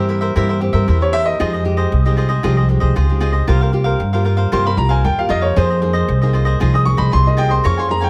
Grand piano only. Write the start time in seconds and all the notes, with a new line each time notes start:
1.02 C#5
1.13 E5
1.26 D#5
4.53 C6
4.67 B5
4.78 A#5
4.90 G#5
5.05 G5
5.19 F5
5.30 D#5
5.42 C#5
5.57 C5
6.75 D#6
6.85 C#6
6.98 B5
7.13 C6
7.27 D#5
7.38 G5
7.51 C6
7.66 C#6
7.79 C6
7.91 A#5
8.04 G5